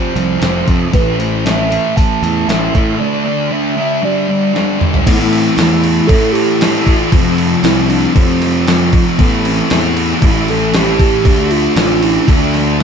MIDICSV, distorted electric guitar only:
0, 0, Header, 1, 2, 480
1, 0, Start_track
1, 0, Key_signature, 0, "minor"
1, 0, Tempo, 515907
1, 867, Time_signature, 4, 2, 24, 8
1, 11937, End_track
2, 0, Start_track
2, 0, Title_t, "Distorted electric guitar"
2, 0, Program_c, 0, 30
2, 0, Note_on_c, 0, 41, 96
2, 0, Note_on_c, 0, 48, 119
2, 0, Note_on_c, 0, 53, 116
2, 0, Note_on_c, 0, 57, 69
2, 129, Note_off_c, 0, 53, 0
2, 140, Note_on_c, 0, 53, 72
2, 154, Note_off_c, 0, 48, 0
2, 165, Note_on_c, 0, 48, 53
2, 367, Note_off_c, 0, 41, 0
2, 378, Note_on_c, 0, 41, 75
2, 382, Note_off_c, 0, 48, 0
2, 393, Note_on_c, 0, 48, 77
2, 397, Note_off_c, 0, 53, 0
2, 408, Note_on_c, 0, 53, 78
2, 610, Note_off_c, 0, 53, 0
2, 622, Note_on_c, 0, 53, 67
2, 638, Note_off_c, 0, 48, 0
2, 649, Note_on_c, 0, 48, 62
2, 849, Note_off_c, 0, 41, 0
2, 850, Note_off_c, 0, 53, 0
2, 861, Note_off_c, 0, 48, 0
2, 865, Note_on_c, 0, 45, 90
2, 881, Note_on_c, 0, 52, 92
2, 890, Note_off_c, 0, 57, 0
2, 893, Note_on_c, 0, 57, 104
2, 1096, Note_off_c, 0, 57, 0
2, 1099, Note_on_c, 0, 57, 69
2, 1117, Note_off_c, 0, 52, 0
2, 1128, Note_on_c, 0, 52, 54
2, 1334, Note_off_c, 0, 45, 0
2, 1345, Note_off_c, 0, 52, 0
2, 1345, Note_on_c, 0, 45, 68
2, 1356, Note_on_c, 0, 52, 76
2, 1367, Note_off_c, 0, 57, 0
2, 1371, Note_on_c, 0, 57, 77
2, 1581, Note_off_c, 0, 57, 0
2, 1584, Note_on_c, 0, 57, 72
2, 1600, Note_off_c, 0, 52, 0
2, 1612, Note_on_c, 0, 52, 57
2, 1818, Note_off_c, 0, 45, 0
2, 1829, Note_on_c, 0, 45, 97
2, 1832, Note_off_c, 0, 52, 0
2, 1843, Note_on_c, 0, 52, 115
2, 1851, Note_off_c, 0, 57, 0
2, 1855, Note_on_c, 0, 57, 104
2, 2070, Note_off_c, 0, 57, 0
2, 2073, Note_on_c, 0, 57, 72
2, 2086, Note_off_c, 0, 52, 0
2, 2097, Note_on_c, 0, 52, 63
2, 2300, Note_off_c, 0, 45, 0
2, 2311, Note_on_c, 0, 45, 73
2, 2316, Note_off_c, 0, 52, 0
2, 2327, Note_on_c, 0, 52, 84
2, 2335, Note_off_c, 0, 57, 0
2, 2338, Note_on_c, 0, 57, 80
2, 2552, Note_off_c, 0, 57, 0
2, 2556, Note_on_c, 0, 57, 62
2, 2572, Note_off_c, 0, 52, 0
2, 2583, Note_on_c, 0, 52, 52
2, 2779, Note_off_c, 0, 45, 0
2, 2785, Note_on_c, 0, 50, 86
2, 2794, Note_off_c, 0, 52, 0
2, 2799, Note_off_c, 0, 57, 0
2, 2799, Note_on_c, 0, 57, 95
2, 2813, Note_on_c, 0, 62, 89
2, 3013, Note_off_c, 0, 62, 0
2, 3024, Note_on_c, 0, 62, 77
2, 3044, Note_off_c, 0, 57, 0
2, 3056, Note_on_c, 0, 57, 56
2, 3258, Note_off_c, 0, 50, 0
2, 3269, Note_on_c, 0, 50, 76
2, 3271, Note_off_c, 0, 57, 0
2, 3282, Note_off_c, 0, 62, 0
2, 3283, Note_on_c, 0, 57, 67
2, 3294, Note_on_c, 0, 62, 78
2, 3494, Note_off_c, 0, 62, 0
2, 3505, Note_on_c, 0, 62, 69
2, 3520, Note_off_c, 0, 57, 0
2, 3531, Note_on_c, 0, 57, 55
2, 3735, Note_on_c, 0, 43, 88
2, 3736, Note_off_c, 0, 62, 0
2, 3738, Note_off_c, 0, 50, 0
2, 3749, Note_off_c, 0, 57, 0
2, 3754, Note_on_c, 0, 50, 104
2, 3767, Note_on_c, 0, 55, 112
2, 3971, Note_off_c, 0, 55, 0
2, 3982, Note_on_c, 0, 55, 62
2, 3997, Note_off_c, 0, 50, 0
2, 4008, Note_on_c, 0, 50, 54
2, 4212, Note_off_c, 0, 43, 0
2, 4223, Note_on_c, 0, 43, 69
2, 4227, Note_off_c, 0, 50, 0
2, 4238, Note_off_c, 0, 55, 0
2, 4239, Note_on_c, 0, 50, 74
2, 4249, Note_on_c, 0, 55, 85
2, 4446, Note_off_c, 0, 55, 0
2, 4458, Note_on_c, 0, 55, 68
2, 4476, Note_off_c, 0, 50, 0
2, 4487, Note_on_c, 0, 50, 52
2, 4692, Note_off_c, 0, 55, 0
2, 4695, Note_off_c, 0, 43, 0
2, 4698, Note_off_c, 0, 50, 0
2, 4702, Note_on_c, 0, 45, 89
2, 4717, Note_on_c, 0, 52, 105
2, 4730, Note_on_c, 0, 57, 109
2, 5175, Note_off_c, 0, 45, 0
2, 5186, Note_on_c, 0, 45, 62
2, 5198, Note_off_c, 0, 52, 0
2, 5202, Note_on_c, 0, 52, 85
2, 5212, Note_off_c, 0, 57, 0
2, 5216, Note_on_c, 0, 57, 82
2, 5650, Note_off_c, 0, 45, 0
2, 5661, Note_on_c, 0, 45, 111
2, 5674, Note_off_c, 0, 52, 0
2, 5678, Note_on_c, 0, 52, 115
2, 5686, Note_off_c, 0, 57, 0
2, 5690, Note_on_c, 0, 57, 117
2, 6124, Note_off_c, 0, 45, 0
2, 6135, Note_on_c, 0, 45, 76
2, 6151, Note_off_c, 0, 52, 0
2, 6154, Note_on_c, 0, 52, 79
2, 6164, Note_off_c, 0, 57, 0
2, 6167, Note_on_c, 0, 57, 85
2, 6609, Note_off_c, 0, 45, 0
2, 6622, Note_on_c, 0, 41, 95
2, 6633, Note_on_c, 0, 48, 94
2, 6644, Note_off_c, 0, 52, 0
2, 6648, Note_on_c, 0, 53, 107
2, 7083, Note_off_c, 0, 41, 0
2, 7095, Note_on_c, 0, 41, 78
2, 7097, Note_off_c, 0, 48, 0
2, 7108, Note_off_c, 0, 53, 0
2, 7108, Note_on_c, 0, 48, 86
2, 7119, Note_on_c, 0, 53, 80
2, 7568, Note_off_c, 0, 41, 0
2, 7580, Note_on_c, 0, 41, 113
2, 7582, Note_off_c, 0, 48, 0
2, 7593, Note_on_c, 0, 48, 127
2, 7596, Note_off_c, 0, 53, 0
2, 7607, Note_on_c, 0, 53, 112
2, 8049, Note_off_c, 0, 41, 0
2, 8060, Note_on_c, 0, 41, 87
2, 8062, Note_off_c, 0, 48, 0
2, 8073, Note_on_c, 0, 48, 89
2, 8075, Note_off_c, 0, 53, 0
2, 8086, Note_on_c, 0, 53, 84
2, 8530, Note_off_c, 0, 41, 0
2, 8536, Note_off_c, 0, 48, 0
2, 8543, Note_off_c, 0, 53, 0
2, 8544, Note_on_c, 0, 45, 94
2, 8560, Note_on_c, 0, 52, 99
2, 8569, Note_off_c, 0, 57, 0
2, 8572, Note_on_c, 0, 57, 105
2, 9011, Note_off_c, 0, 45, 0
2, 9022, Note_on_c, 0, 45, 84
2, 9037, Note_off_c, 0, 52, 0
2, 9041, Note_on_c, 0, 52, 86
2, 9050, Note_off_c, 0, 57, 0
2, 9054, Note_on_c, 0, 57, 80
2, 9491, Note_off_c, 0, 45, 0
2, 9502, Note_on_c, 0, 45, 104
2, 9511, Note_off_c, 0, 52, 0
2, 9515, Note_on_c, 0, 52, 116
2, 9523, Note_off_c, 0, 57, 0
2, 9527, Note_on_c, 0, 57, 123
2, 9964, Note_off_c, 0, 45, 0
2, 9975, Note_on_c, 0, 45, 82
2, 9988, Note_off_c, 0, 52, 0
2, 9992, Note_on_c, 0, 52, 86
2, 9999, Note_off_c, 0, 57, 0
2, 10003, Note_on_c, 0, 57, 91
2, 10445, Note_off_c, 0, 45, 0
2, 10464, Note_on_c, 0, 50, 97
2, 10475, Note_off_c, 0, 52, 0
2, 10479, Note_off_c, 0, 57, 0
2, 10479, Note_on_c, 0, 57, 97
2, 10491, Note_on_c, 0, 62, 99
2, 10931, Note_off_c, 0, 50, 0
2, 10942, Note_on_c, 0, 50, 86
2, 10953, Note_off_c, 0, 57, 0
2, 10956, Note_off_c, 0, 62, 0
2, 10957, Note_on_c, 0, 57, 83
2, 10967, Note_on_c, 0, 62, 83
2, 11407, Note_off_c, 0, 50, 0
2, 11418, Note_on_c, 0, 50, 111
2, 11427, Note_off_c, 0, 57, 0
2, 11431, Note_on_c, 0, 57, 114
2, 11434, Note_off_c, 0, 62, 0
2, 11446, Note_on_c, 0, 62, 119
2, 11889, Note_off_c, 0, 50, 0
2, 11900, Note_on_c, 0, 50, 85
2, 11908, Note_off_c, 0, 57, 0
2, 11915, Note_off_c, 0, 62, 0
2, 11937, Note_off_c, 0, 50, 0
2, 11937, End_track
0, 0, End_of_file